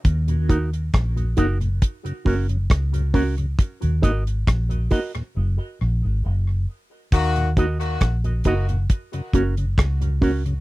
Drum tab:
HH |xxxxxxxxxxoxxxox|xxxxxxox--------|xxxxxxxxxxxxxxox|
SD |----r-------r---|----r-----------|----r-------r---|
BD |o-o-o-o-o-o-o-o-|o-o-o-o---------|o-o-o-o-o-o-o-o-|